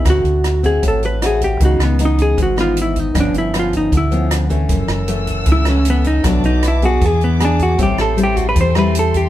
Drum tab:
HH |xxxxxxxx|xxxxxxxx|xxxxxxxx|xxxxxxxx|
SD |r-r---r-|-r---r--|r-r---r-|-r---r--|
BD |o--oo--o|o--oo--o|o--oo--o|o--oo--o|

HH |xxxxxxxx|xxxxxxxx|
SD |r-r---r-|-r---r--|
BD |o--oo--o|o--oo--o|